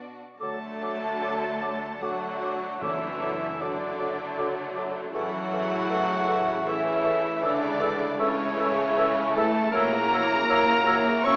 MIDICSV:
0, 0, Header, 1, 13, 480
1, 0, Start_track
1, 0, Key_signature, 2, "major"
1, 0, Tempo, 804290
1, 243, Time_signature, 3, 2, 24, 8
1, 2155, Tempo, 765306
1, 7018, End_track
2, 0, Start_track
2, 0, Title_t, "Flute"
2, 0, Program_c, 0, 73
2, 239, Note_on_c, 0, 86, 45
2, 294, Note_off_c, 0, 86, 0
2, 496, Note_on_c, 0, 86, 38
2, 548, Note_off_c, 0, 86, 0
2, 740, Note_on_c, 0, 86, 38
2, 792, Note_off_c, 0, 86, 0
2, 969, Note_on_c, 0, 86, 39
2, 1023, Note_off_c, 0, 86, 0
2, 1206, Note_on_c, 0, 86, 46
2, 1260, Note_off_c, 0, 86, 0
2, 1453, Note_on_c, 0, 86, 39
2, 1506, Note_off_c, 0, 86, 0
2, 1689, Note_on_c, 0, 86, 50
2, 1742, Note_off_c, 0, 86, 0
2, 1914, Note_on_c, 0, 86, 44
2, 1967, Note_off_c, 0, 86, 0
2, 2150, Note_on_c, 0, 86, 41
2, 2205, Note_off_c, 0, 86, 0
2, 2386, Note_on_c, 0, 86, 47
2, 2442, Note_off_c, 0, 86, 0
2, 2639, Note_on_c, 0, 86, 50
2, 2694, Note_off_c, 0, 86, 0
2, 2867, Note_on_c, 0, 86, 48
2, 2923, Note_off_c, 0, 86, 0
2, 3115, Note_on_c, 0, 85, 53
2, 3169, Note_off_c, 0, 85, 0
2, 3358, Note_on_c, 0, 85, 51
2, 3412, Note_off_c, 0, 85, 0
2, 3597, Note_on_c, 0, 85, 50
2, 3651, Note_off_c, 0, 85, 0
2, 3837, Note_on_c, 0, 85, 55
2, 3891, Note_off_c, 0, 85, 0
2, 4075, Note_on_c, 0, 85, 58
2, 4128, Note_off_c, 0, 85, 0
2, 4306, Note_on_c, 0, 85, 55
2, 4361, Note_off_c, 0, 85, 0
2, 4561, Note_on_c, 0, 88, 68
2, 4614, Note_off_c, 0, 88, 0
2, 4787, Note_on_c, 0, 88, 59
2, 4842, Note_off_c, 0, 88, 0
2, 5029, Note_on_c, 0, 88, 58
2, 5085, Note_off_c, 0, 88, 0
2, 5280, Note_on_c, 0, 88, 60
2, 5334, Note_off_c, 0, 88, 0
2, 5519, Note_on_c, 0, 88, 63
2, 5574, Note_off_c, 0, 88, 0
2, 5771, Note_on_c, 0, 88, 59
2, 5825, Note_off_c, 0, 88, 0
2, 6004, Note_on_c, 0, 88, 64
2, 6058, Note_off_c, 0, 88, 0
2, 6247, Note_on_c, 0, 88, 62
2, 6299, Note_off_c, 0, 88, 0
2, 6472, Note_on_c, 0, 88, 64
2, 6525, Note_off_c, 0, 88, 0
2, 6702, Note_on_c, 0, 88, 67
2, 6758, Note_off_c, 0, 88, 0
2, 6951, Note_on_c, 0, 88, 69
2, 7006, Note_off_c, 0, 88, 0
2, 7018, End_track
3, 0, Start_track
3, 0, Title_t, "Violin section"
3, 0, Program_c, 1, 48
3, 244, Note_on_c, 1, 81, 80
3, 1179, Note_off_c, 1, 81, 0
3, 1197, Note_on_c, 1, 78, 65
3, 1681, Note_off_c, 1, 78, 0
3, 1684, Note_on_c, 1, 76, 71
3, 2146, Note_off_c, 1, 76, 0
3, 2151, Note_on_c, 1, 74, 65
3, 2882, Note_off_c, 1, 74, 0
3, 3121, Note_on_c, 1, 78, 97
3, 4050, Note_off_c, 1, 78, 0
3, 4071, Note_on_c, 1, 76, 75
3, 4538, Note_on_c, 1, 74, 91
3, 4550, Note_off_c, 1, 76, 0
3, 5027, Note_off_c, 1, 74, 0
3, 5037, Note_on_c, 1, 73, 92
3, 5756, Note_on_c, 1, 81, 95
3, 5767, Note_off_c, 1, 73, 0
3, 5994, Note_on_c, 1, 82, 120
3, 5998, Note_off_c, 1, 81, 0
3, 6940, Note_on_c, 1, 85, 102
3, 6946, Note_off_c, 1, 82, 0
3, 7018, Note_off_c, 1, 85, 0
3, 7018, End_track
4, 0, Start_track
4, 0, Title_t, "Clarinet"
4, 0, Program_c, 2, 71
4, 238, Note_on_c, 2, 69, 37
4, 333, Note_off_c, 2, 69, 0
4, 481, Note_on_c, 2, 69, 37
4, 576, Note_off_c, 2, 69, 0
4, 726, Note_on_c, 2, 69, 43
4, 822, Note_off_c, 2, 69, 0
4, 955, Note_on_c, 2, 69, 41
4, 1050, Note_off_c, 2, 69, 0
4, 1206, Note_on_c, 2, 69, 41
4, 1302, Note_off_c, 2, 69, 0
4, 1439, Note_on_c, 2, 69, 38
4, 1534, Note_off_c, 2, 69, 0
4, 1682, Note_on_c, 2, 69, 44
4, 1778, Note_off_c, 2, 69, 0
4, 1924, Note_on_c, 2, 69, 41
4, 2020, Note_off_c, 2, 69, 0
4, 2160, Note_on_c, 2, 69, 48
4, 2260, Note_off_c, 2, 69, 0
4, 2405, Note_on_c, 2, 69, 45
4, 2505, Note_off_c, 2, 69, 0
4, 2637, Note_on_c, 2, 69, 49
4, 2738, Note_off_c, 2, 69, 0
4, 2886, Note_on_c, 2, 69, 43
4, 2986, Note_off_c, 2, 69, 0
4, 3122, Note_on_c, 2, 69, 49
4, 3222, Note_off_c, 2, 69, 0
4, 3354, Note_on_c, 2, 69, 51
4, 3454, Note_off_c, 2, 69, 0
4, 3595, Note_on_c, 2, 69, 56
4, 3695, Note_off_c, 2, 69, 0
4, 3831, Note_on_c, 2, 69, 53
4, 3932, Note_off_c, 2, 69, 0
4, 4074, Note_on_c, 2, 69, 56
4, 4174, Note_off_c, 2, 69, 0
4, 4315, Note_on_c, 2, 69, 53
4, 4416, Note_off_c, 2, 69, 0
4, 4556, Note_on_c, 2, 69, 61
4, 4657, Note_off_c, 2, 69, 0
4, 4785, Note_on_c, 2, 69, 59
4, 4885, Note_off_c, 2, 69, 0
4, 5036, Note_on_c, 2, 69, 62
4, 5136, Note_off_c, 2, 69, 0
4, 5276, Note_on_c, 2, 69, 61
4, 5376, Note_off_c, 2, 69, 0
4, 5523, Note_on_c, 2, 69, 62
4, 5623, Note_off_c, 2, 69, 0
4, 5758, Note_on_c, 2, 69, 59
4, 5858, Note_off_c, 2, 69, 0
4, 5997, Note_on_c, 2, 73, 68
4, 6097, Note_off_c, 2, 73, 0
4, 6245, Note_on_c, 2, 73, 63
4, 6345, Note_off_c, 2, 73, 0
4, 6471, Note_on_c, 2, 73, 63
4, 6572, Note_off_c, 2, 73, 0
4, 6709, Note_on_c, 2, 73, 66
4, 6810, Note_off_c, 2, 73, 0
4, 6955, Note_on_c, 2, 73, 64
4, 7018, Note_off_c, 2, 73, 0
4, 7018, End_track
5, 0, Start_track
5, 0, Title_t, "Harp"
5, 0, Program_c, 3, 46
5, 0, Note_on_c, 3, 47, 29
5, 0, Note_on_c, 3, 62, 25
5, 0, Note_on_c, 3, 66, 26
5, 0, Note_on_c, 3, 71, 25
5, 210, Note_off_c, 3, 47, 0
5, 242, Note_on_c, 3, 50, 43
5, 250, Note_off_c, 3, 71, 0
5, 363, Note_on_c, 3, 57, 36
5, 476, Note_off_c, 3, 62, 0
5, 483, Note_on_c, 3, 62, 33
5, 597, Note_off_c, 3, 66, 0
5, 604, Note_on_c, 3, 66, 38
5, 846, Note_on_c, 3, 74, 40
5, 965, Note_on_c, 3, 78, 38
5, 1084, Note_on_c, 3, 81, 41
5, 1193, Note_off_c, 3, 78, 0
5, 1200, Note_on_c, 3, 78, 38
5, 1316, Note_off_c, 3, 74, 0
5, 1323, Note_on_c, 3, 74, 39
5, 1443, Note_on_c, 3, 69, 41
5, 1557, Note_off_c, 3, 66, 0
5, 1679, Note_on_c, 3, 42, 50
5, 1702, Note_off_c, 3, 50, 0
5, 1797, Note_on_c, 3, 54, 40
5, 1913, Note_off_c, 3, 62, 0
5, 1920, Note_on_c, 3, 62, 39
5, 2037, Note_on_c, 3, 66, 40
5, 2142, Note_off_c, 3, 69, 0
5, 2150, Note_on_c, 3, 69, 41
5, 2262, Note_off_c, 3, 74, 0
5, 2270, Note_on_c, 3, 74, 40
5, 2392, Note_off_c, 3, 78, 0
5, 2399, Note_on_c, 3, 78, 44
5, 2508, Note_off_c, 3, 81, 0
5, 2516, Note_on_c, 3, 81, 42
5, 2631, Note_off_c, 3, 78, 0
5, 2639, Note_on_c, 3, 78, 42
5, 2718, Note_off_c, 3, 57, 0
5, 2752, Note_off_c, 3, 74, 0
5, 2760, Note_on_c, 3, 74, 49
5, 2869, Note_off_c, 3, 69, 0
5, 2877, Note_on_c, 3, 69, 42
5, 2991, Note_off_c, 3, 66, 0
5, 2999, Note_on_c, 3, 66, 45
5, 3123, Note_on_c, 3, 45, 56
5, 3140, Note_off_c, 3, 54, 0
5, 3140, Note_off_c, 3, 66, 0
5, 3141, Note_off_c, 3, 42, 0
5, 3141, Note_off_c, 3, 74, 0
5, 3141, Note_off_c, 3, 78, 0
5, 3143, Note_off_c, 3, 62, 0
5, 3237, Note_on_c, 3, 52, 46
5, 3354, Note_on_c, 3, 61, 43
5, 3468, Note_on_c, 3, 64, 46
5, 3580, Note_off_c, 3, 69, 0
5, 3588, Note_on_c, 3, 69, 51
5, 3709, Note_on_c, 3, 73, 47
5, 3822, Note_on_c, 3, 76, 55
5, 3937, Note_off_c, 3, 81, 0
5, 3944, Note_on_c, 3, 81, 47
5, 4061, Note_off_c, 3, 76, 0
5, 4068, Note_on_c, 3, 76, 55
5, 4175, Note_off_c, 3, 73, 0
5, 4183, Note_on_c, 3, 73, 52
5, 4294, Note_off_c, 3, 69, 0
5, 4301, Note_on_c, 3, 69, 50
5, 4416, Note_off_c, 3, 64, 0
5, 4424, Note_on_c, 3, 64, 45
5, 4539, Note_on_c, 3, 49, 61
5, 4569, Note_off_c, 3, 52, 0
5, 4572, Note_off_c, 3, 45, 0
5, 4654, Note_off_c, 3, 61, 0
5, 4662, Note_on_c, 3, 61, 48
5, 4785, Note_on_c, 3, 57, 49
5, 4900, Note_off_c, 3, 64, 0
5, 4908, Note_on_c, 3, 64, 51
5, 5018, Note_off_c, 3, 69, 0
5, 5026, Note_on_c, 3, 69, 58
5, 5144, Note_off_c, 3, 64, 0
5, 5151, Note_on_c, 3, 64, 55
5, 5271, Note_off_c, 3, 76, 0
5, 5279, Note_on_c, 3, 76, 55
5, 5386, Note_off_c, 3, 81, 0
5, 5393, Note_on_c, 3, 81, 54
5, 5514, Note_off_c, 3, 76, 0
5, 5521, Note_on_c, 3, 76, 57
5, 5630, Note_off_c, 3, 69, 0
5, 5638, Note_on_c, 3, 69, 57
5, 5755, Note_off_c, 3, 64, 0
5, 5762, Note_on_c, 3, 64, 60
5, 5873, Note_off_c, 3, 57, 0
5, 5881, Note_on_c, 3, 57, 55
5, 6006, Note_on_c, 3, 46, 73
5, 6020, Note_off_c, 3, 49, 0
5, 6023, Note_off_c, 3, 57, 0
5, 6023, Note_off_c, 3, 81, 0
5, 6024, Note_off_c, 3, 69, 0
5, 6117, Note_on_c, 3, 58, 59
5, 6232, Note_off_c, 3, 61, 0
5, 6239, Note_on_c, 3, 61, 55
5, 6353, Note_off_c, 3, 64, 0
5, 6360, Note_on_c, 3, 64, 52
5, 6476, Note_on_c, 3, 66, 57
5, 6587, Note_off_c, 3, 73, 0
5, 6595, Note_on_c, 3, 73, 62
5, 6709, Note_off_c, 3, 76, 0
5, 6717, Note_on_c, 3, 76, 60
5, 6831, Note_on_c, 3, 78, 60
5, 6938, Note_off_c, 3, 76, 0
5, 6946, Note_on_c, 3, 76, 65
5, 7018, Note_off_c, 3, 46, 0
5, 7018, Note_off_c, 3, 58, 0
5, 7018, Note_off_c, 3, 61, 0
5, 7018, Note_off_c, 3, 64, 0
5, 7018, Note_off_c, 3, 66, 0
5, 7018, Note_off_c, 3, 73, 0
5, 7018, Note_off_c, 3, 76, 0
5, 7018, Note_off_c, 3, 78, 0
5, 7018, End_track
6, 0, Start_track
6, 0, Title_t, "Cor anglais"
6, 0, Program_c, 4, 69
6, 243, Note_on_c, 4, 69, 69
6, 1209, Note_on_c, 4, 66, 58
6, 1218, Note_off_c, 4, 69, 0
6, 1678, Note_on_c, 4, 64, 65
6, 1687, Note_off_c, 4, 66, 0
6, 2156, Note_on_c, 4, 62, 56
6, 2166, Note_off_c, 4, 64, 0
6, 2885, Note_off_c, 4, 62, 0
6, 3124, Note_on_c, 4, 66, 85
6, 4083, Note_on_c, 4, 64, 64
6, 4092, Note_off_c, 4, 66, 0
6, 4544, Note_off_c, 4, 64, 0
6, 4548, Note_on_c, 4, 62, 79
6, 5023, Note_off_c, 4, 62, 0
6, 5029, Note_on_c, 4, 61, 76
6, 5756, Note_on_c, 4, 69, 77
6, 5766, Note_off_c, 4, 61, 0
6, 5979, Note_off_c, 4, 69, 0
6, 5982, Note_on_c, 4, 70, 105
6, 6941, Note_on_c, 4, 73, 96
6, 6951, Note_off_c, 4, 70, 0
6, 7018, Note_off_c, 4, 73, 0
6, 7018, End_track
7, 0, Start_track
7, 0, Title_t, "Violin section"
7, 0, Program_c, 5, 48
7, 0, Note_on_c, 5, 62, 35
7, 0, Note_on_c, 5, 66, 34
7, 109, Note_off_c, 5, 62, 0
7, 111, Note_off_c, 5, 66, 0
7, 257, Note_on_c, 5, 62, 44
7, 260, Note_on_c, 5, 57, 46
7, 1185, Note_off_c, 5, 62, 0
7, 1187, Note_off_c, 5, 57, 0
7, 1218, Note_on_c, 5, 57, 50
7, 1220, Note_on_c, 5, 62, 49
7, 1682, Note_off_c, 5, 57, 0
7, 1683, Note_off_c, 5, 62, 0
7, 1691, Note_on_c, 5, 62, 51
7, 1694, Note_on_c, 5, 57, 53
7, 2150, Note_off_c, 5, 62, 0
7, 2151, Note_off_c, 5, 57, 0
7, 2158, Note_on_c, 5, 62, 49
7, 2159, Note_on_c, 5, 57, 55
7, 3106, Note_off_c, 5, 62, 0
7, 3107, Note_off_c, 5, 57, 0
7, 3132, Note_on_c, 5, 64, 59
7, 3135, Note_on_c, 5, 57, 63
7, 4062, Note_off_c, 5, 64, 0
7, 4063, Note_off_c, 5, 57, 0
7, 4085, Note_on_c, 5, 57, 60
7, 4088, Note_on_c, 5, 64, 60
7, 4543, Note_off_c, 5, 57, 0
7, 4545, Note_off_c, 5, 64, 0
7, 4551, Note_on_c, 5, 57, 60
7, 4552, Note_on_c, 5, 64, 64
7, 5024, Note_off_c, 5, 57, 0
7, 5025, Note_off_c, 5, 64, 0
7, 5037, Note_on_c, 5, 57, 71
7, 5037, Note_on_c, 5, 64, 65
7, 5989, Note_off_c, 5, 57, 0
7, 5989, Note_off_c, 5, 64, 0
7, 6008, Note_on_c, 5, 64, 64
7, 6012, Note_on_c, 5, 58, 66
7, 6118, Note_off_c, 5, 64, 0
7, 6121, Note_off_c, 5, 58, 0
7, 6134, Note_on_c, 5, 61, 58
7, 6137, Note_on_c, 5, 66, 59
7, 6248, Note_off_c, 5, 61, 0
7, 6249, Note_off_c, 5, 66, 0
7, 6251, Note_on_c, 5, 64, 59
7, 6255, Note_on_c, 5, 58, 62
7, 6361, Note_on_c, 5, 66, 58
7, 6363, Note_on_c, 5, 61, 57
7, 6364, Note_off_c, 5, 64, 0
7, 6366, Note_off_c, 5, 58, 0
7, 6475, Note_on_c, 5, 58, 60
7, 6478, Note_off_c, 5, 66, 0
7, 6479, Note_off_c, 5, 61, 0
7, 6482, Note_on_c, 5, 64, 60
7, 6585, Note_off_c, 5, 58, 0
7, 6589, Note_off_c, 5, 64, 0
7, 6595, Note_on_c, 5, 61, 56
7, 6602, Note_on_c, 5, 66, 61
7, 6713, Note_off_c, 5, 61, 0
7, 6714, Note_on_c, 5, 64, 61
7, 6716, Note_on_c, 5, 58, 59
7, 6717, Note_off_c, 5, 66, 0
7, 6833, Note_off_c, 5, 64, 0
7, 6833, Note_on_c, 5, 61, 61
7, 6834, Note_off_c, 5, 58, 0
7, 6836, Note_on_c, 5, 66, 60
7, 6953, Note_off_c, 5, 61, 0
7, 6954, Note_on_c, 5, 58, 64
7, 6954, Note_on_c, 5, 64, 60
7, 6955, Note_off_c, 5, 66, 0
7, 7018, Note_off_c, 5, 58, 0
7, 7018, Note_off_c, 5, 64, 0
7, 7018, End_track
8, 0, Start_track
8, 0, Title_t, "Bassoon"
8, 0, Program_c, 6, 70
8, 253, Note_on_c, 6, 54, 40
8, 348, Note_off_c, 6, 54, 0
8, 489, Note_on_c, 6, 54, 39
8, 584, Note_off_c, 6, 54, 0
8, 726, Note_on_c, 6, 54, 38
8, 821, Note_off_c, 6, 54, 0
8, 967, Note_on_c, 6, 54, 41
8, 1062, Note_off_c, 6, 54, 0
8, 1203, Note_on_c, 6, 54, 43
8, 1299, Note_off_c, 6, 54, 0
8, 1445, Note_on_c, 6, 54, 39
8, 1541, Note_off_c, 6, 54, 0
8, 1695, Note_on_c, 6, 54, 45
8, 1790, Note_off_c, 6, 54, 0
8, 1913, Note_on_c, 6, 54, 45
8, 2008, Note_off_c, 6, 54, 0
8, 2154, Note_on_c, 6, 54, 47
8, 2254, Note_off_c, 6, 54, 0
8, 2396, Note_on_c, 6, 54, 48
8, 2496, Note_off_c, 6, 54, 0
8, 2646, Note_on_c, 6, 54, 49
8, 2746, Note_off_c, 6, 54, 0
8, 2883, Note_on_c, 6, 54, 45
8, 2984, Note_off_c, 6, 54, 0
8, 3117, Note_on_c, 6, 52, 51
8, 3217, Note_off_c, 6, 52, 0
8, 3357, Note_on_c, 6, 52, 52
8, 3458, Note_off_c, 6, 52, 0
8, 3589, Note_on_c, 6, 52, 52
8, 3689, Note_off_c, 6, 52, 0
8, 3823, Note_on_c, 6, 52, 55
8, 3923, Note_off_c, 6, 52, 0
8, 4070, Note_on_c, 6, 52, 56
8, 4170, Note_off_c, 6, 52, 0
8, 4304, Note_on_c, 6, 52, 55
8, 4404, Note_off_c, 6, 52, 0
8, 4542, Note_on_c, 6, 52, 61
8, 4643, Note_off_c, 6, 52, 0
8, 4780, Note_on_c, 6, 52, 54
8, 4880, Note_off_c, 6, 52, 0
8, 5029, Note_on_c, 6, 52, 58
8, 5129, Note_off_c, 6, 52, 0
8, 5265, Note_on_c, 6, 52, 59
8, 5365, Note_off_c, 6, 52, 0
8, 5513, Note_on_c, 6, 52, 63
8, 5614, Note_off_c, 6, 52, 0
8, 5767, Note_on_c, 6, 52, 62
8, 5867, Note_off_c, 6, 52, 0
8, 6000, Note_on_c, 6, 54, 66
8, 6100, Note_off_c, 6, 54, 0
8, 6236, Note_on_c, 6, 54, 62
8, 6337, Note_off_c, 6, 54, 0
8, 6475, Note_on_c, 6, 54, 62
8, 6575, Note_off_c, 6, 54, 0
8, 6711, Note_on_c, 6, 54, 65
8, 6811, Note_off_c, 6, 54, 0
8, 6949, Note_on_c, 6, 54, 66
8, 7018, Note_off_c, 6, 54, 0
8, 7018, End_track
9, 0, Start_track
9, 0, Title_t, "French horn section"
9, 0, Program_c, 7, 60
9, 244, Note_on_c, 7, 57, 72
9, 1179, Note_off_c, 7, 57, 0
9, 1217, Note_on_c, 7, 54, 59
9, 1684, Note_on_c, 7, 52, 62
9, 1691, Note_off_c, 7, 54, 0
9, 2146, Note_off_c, 7, 52, 0
9, 2159, Note_on_c, 7, 50, 53
9, 2886, Note_off_c, 7, 50, 0
9, 3134, Note_on_c, 7, 54, 93
9, 4057, Note_off_c, 7, 54, 0
9, 4084, Note_on_c, 7, 52, 66
9, 4557, Note_off_c, 7, 52, 0
9, 4559, Note_on_c, 7, 50, 80
9, 5032, Note_on_c, 7, 49, 79
9, 5038, Note_off_c, 7, 50, 0
9, 5765, Note_off_c, 7, 49, 0
9, 5767, Note_on_c, 7, 57, 78
9, 5988, Note_on_c, 7, 58, 100
9, 6008, Note_off_c, 7, 57, 0
9, 6924, Note_off_c, 7, 58, 0
9, 6939, Note_on_c, 7, 61, 95
9, 7018, Note_off_c, 7, 61, 0
9, 7018, End_track
10, 0, Start_track
10, 0, Title_t, "Cello section"
10, 0, Program_c, 8, 48
10, 0, Note_on_c, 8, 47, 35
10, 100, Note_off_c, 8, 47, 0
10, 242, Note_on_c, 8, 57, 60
10, 1178, Note_off_c, 8, 57, 0
10, 1199, Note_on_c, 8, 54, 59
10, 1680, Note_on_c, 8, 52, 58
10, 1682, Note_off_c, 8, 54, 0
10, 2153, Note_off_c, 8, 52, 0
10, 2156, Note_on_c, 8, 50, 49
10, 2884, Note_off_c, 8, 50, 0
10, 3115, Note_on_c, 8, 54, 74
10, 4047, Note_off_c, 8, 54, 0
10, 4071, Note_on_c, 8, 52, 62
10, 4551, Note_off_c, 8, 52, 0
10, 4555, Note_on_c, 8, 50, 67
10, 5031, Note_on_c, 8, 49, 69
10, 5036, Note_off_c, 8, 50, 0
10, 5764, Note_off_c, 8, 49, 0
10, 5764, Note_on_c, 8, 57, 82
10, 5997, Note_on_c, 8, 58, 95
10, 6007, Note_off_c, 8, 57, 0
10, 6948, Note_off_c, 8, 58, 0
10, 6949, Note_on_c, 8, 61, 91
10, 7018, Note_off_c, 8, 61, 0
10, 7018, End_track
11, 0, Start_track
11, 0, Title_t, "Viola section"
11, 0, Program_c, 10, 48
11, 240, Note_on_c, 10, 50, 46
11, 242, Note_on_c, 10, 54, 46
11, 1177, Note_off_c, 10, 50, 0
11, 1178, Note_off_c, 10, 54, 0
11, 1202, Note_on_c, 10, 54, 49
11, 1205, Note_on_c, 10, 50, 49
11, 1674, Note_off_c, 10, 50, 0
11, 1674, Note_off_c, 10, 54, 0
11, 1681, Note_on_c, 10, 50, 53
11, 1682, Note_on_c, 10, 54, 50
11, 2139, Note_off_c, 10, 50, 0
11, 2141, Note_off_c, 10, 54, 0
11, 2146, Note_on_c, 10, 50, 60
11, 2148, Note_on_c, 10, 54, 58
11, 3100, Note_off_c, 10, 50, 0
11, 3101, Note_off_c, 10, 54, 0
11, 3113, Note_on_c, 10, 52, 65
11, 3115, Note_on_c, 10, 49, 61
11, 4052, Note_off_c, 10, 52, 0
11, 4053, Note_off_c, 10, 49, 0
11, 4065, Note_on_c, 10, 49, 62
11, 4068, Note_on_c, 10, 52, 58
11, 4535, Note_off_c, 10, 49, 0
11, 4537, Note_off_c, 10, 52, 0
11, 4542, Note_on_c, 10, 49, 67
11, 4544, Note_on_c, 10, 52, 64
11, 5018, Note_off_c, 10, 52, 0
11, 5020, Note_off_c, 10, 49, 0
11, 5026, Note_on_c, 10, 52, 71
11, 5028, Note_on_c, 10, 49, 74
11, 5984, Note_off_c, 10, 52, 0
11, 5985, Note_off_c, 10, 49, 0
11, 5999, Note_on_c, 10, 54, 68
11, 6000, Note_on_c, 10, 52, 69
11, 6107, Note_off_c, 10, 52, 0
11, 6114, Note_off_c, 10, 54, 0
11, 6114, Note_on_c, 10, 49, 61
11, 6114, Note_on_c, 10, 52, 60
11, 6231, Note_off_c, 10, 52, 0
11, 6237, Note_on_c, 10, 54, 62
11, 6238, Note_off_c, 10, 49, 0
11, 6239, Note_on_c, 10, 52, 65
11, 6353, Note_off_c, 10, 52, 0
11, 6358, Note_off_c, 10, 54, 0
11, 6359, Note_on_c, 10, 49, 62
11, 6360, Note_on_c, 10, 52, 58
11, 6464, Note_off_c, 10, 52, 0
11, 6471, Note_on_c, 10, 54, 61
11, 6472, Note_on_c, 10, 52, 63
11, 6477, Note_off_c, 10, 49, 0
11, 6576, Note_off_c, 10, 52, 0
11, 6583, Note_off_c, 10, 54, 0
11, 6584, Note_on_c, 10, 52, 58
11, 6585, Note_on_c, 10, 49, 61
11, 6698, Note_off_c, 10, 52, 0
11, 6705, Note_on_c, 10, 52, 60
11, 6705, Note_on_c, 10, 54, 61
11, 6708, Note_off_c, 10, 49, 0
11, 6823, Note_off_c, 10, 52, 0
11, 6829, Note_off_c, 10, 54, 0
11, 6829, Note_on_c, 10, 49, 62
11, 6831, Note_on_c, 10, 52, 57
11, 6946, Note_off_c, 10, 52, 0
11, 6952, Note_off_c, 10, 49, 0
11, 6952, Note_on_c, 10, 54, 61
11, 6953, Note_on_c, 10, 52, 60
11, 7018, Note_off_c, 10, 52, 0
11, 7018, Note_off_c, 10, 54, 0
11, 7018, End_track
12, 0, Start_track
12, 0, Title_t, "Timpani"
12, 0, Program_c, 11, 47
12, 1681, Note_on_c, 11, 42, 65
12, 2373, Note_off_c, 11, 42, 0
12, 7018, End_track
13, 0, Start_track
13, 0, Title_t, "Double bass section"
13, 0, Program_c, 12, 48
13, 239, Note_on_c, 12, 38, 44
13, 1657, Note_off_c, 12, 38, 0
13, 1683, Note_on_c, 12, 30, 51
13, 3099, Note_off_c, 12, 30, 0
13, 3117, Note_on_c, 12, 33, 59
13, 4550, Note_off_c, 12, 33, 0
13, 4552, Note_on_c, 12, 37, 66
13, 6002, Note_on_c, 12, 34, 75
13, 6007, Note_off_c, 12, 37, 0
13, 6420, Note_off_c, 12, 34, 0
13, 6478, Note_on_c, 12, 34, 80
13, 6896, Note_off_c, 12, 34, 0
13, 6945, Note_on_c, 12, 34, 81
13, 7018, Note_off_c, 12, 34, 0
13, 7018, End_track
0, 0, End_of_file